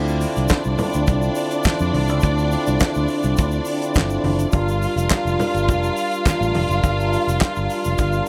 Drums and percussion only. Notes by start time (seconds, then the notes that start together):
0.08 shaker
0.21 open hi-hat, shaker
0.36 closed hi-hat, shaker
0.48 kick, snare, clap, closed hi-hat, high conga, shaker
0.64 shaker
0.78 open hi-hat, low conga, shaker
0.93 closed hi-hat, shaker
1.07 kick, closed hi-hat, muted conga, shaker
1.22 shaker
1.35 open hi-hat, shaker
1.51 closed hi-hat, shaker
1.63 kick, snare, clap, closed hi-hat, high conga, shaker
1.79 shaker
1.94 open hi-hat, high conga
2.08 closed hi-hat, shaker
2.21 kick, closed hi-hat, muted conga, shaker
2.38 shaker
2.51 open hi-hat, shaker
2.67 closed hi-hat, shaker
2.80 kick, snare, clap, closed hi-hat, high conga, shaker
2.94 shaker
3.08 open hi-hat, shaker
3.23 closed hi-hat, shaker
3.37 kick, closed hi-hat, muted conga, shaker
3.51 shaker
3.65 open hi-hat, shaker
3.82 closed hi-hat, shaker
3.94 kick, snare, clap, closed hi-hat, high conga, shaker
4.10 shaker
4.24 open hi-hat, high conga
4.39 closed hi-hat, shaker
4.52 kick, closed hi-hat, muted conga, shaker
4.68 shaker
4.82 open hi-hat, shaker
4.97 closed hi-hat, shaker
5.10 kick, snare, clap, closed hi-hat, high conga, shaker
5.27 shaker
5.39 open hi-hat, low conga, shaker
5.54 closed hi-hat, shaker
5.68 kick, closed hi-hat, muted conga, shaker
5.84 shaker
5.96 open hi-hat, shaker
6.11 closed hi-hat, shaker
6.26 kick, snare, clap, closed hi-hat, high conga, shaker
6.42 shaker
6.55 open hi-hat, high conga
6.69 closed hi-hat, shaker
6.83 kick, closed hi-hat, muted conga, shaker
7.00 shaker
7.13 open hi-hat, muted conga, shaker
7.28 closed hi-hat, shaker
7.41 kick, snare, clap, closed hi-hat, high conga, shaker
7.56 shaker
7.70 open hi-hat, shaker
7.84 closed hi-hat, shaker
7.98 kick, closed hi-hat, muted conga, shaker
8.12 shaker